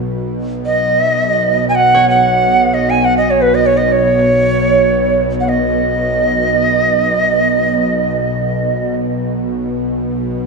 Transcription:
0.00 10.46 B1 medium
0.00 10.46 B2 medium
0.66 1.65 D#5 medium
1.69 1.77 G#5 medium
1.75 2.09 F#5 medium
1.94 9.78 C#5 medium
2.10 2.75 F#5 medium
2.74 2.91 D#5 medium
2.90 3.06 G#5 medium
3.05 3.17 F#5 medium
3.17 3.32 D#5 medium
3.31 3.43 C#5 medium
3.42 3.56 B4 medium
3.55 3.68 D#5 medium
3.66 3.79 C#5 medium
3.77 3.94 D#5 medium
3.92 5.21 C#5 medium
5.40 5.45 F#5 soft
5.45 8.95 D#5 medium
5.45 5.50 F#5 medium

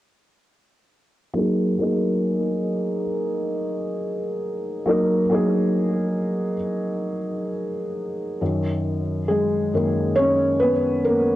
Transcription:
1.34 1.67 F#3 medium
1.34 1.68 A#3 medium
1.34 1.69 D#4 medium
1.38 1.69 G#4 medium
1.78 3.01 F#3 medium
1.78 3.02 A#3 medium
1.78 3.02 D#4 medium
1.83 3.03 G#4 medium
4.86 5.20 F#3 medium
4.86 5.20 A#3 medium
4.86 5.21 D#4 medium
4.90 5.22 A#4 medium
5.30 6.53 F#3 medium
5.30 6.54 A#3 medium
5.30 6.55 D#4 medium
5.34 6.55 G#4 medium
8.41 9.72 F#2 medium
8.41 9.72 D#3 soft
8.41 11.36 F#3 medium
9.28 10.14 G#3 medium
9.28 10.19 G#4 medium
9.73 10.13 F#2 soft
9.73 10.14 D#3 soft
9.73 10.14 A#3 medium
10.15 10.59 C#4 medium
10.15 10.57 C#5 medium
10.59 10.72 B3 medium
10.59 10.70 B4 medium
11.05 11.36 A#3 medium
11.05 11.36 A#4 medium

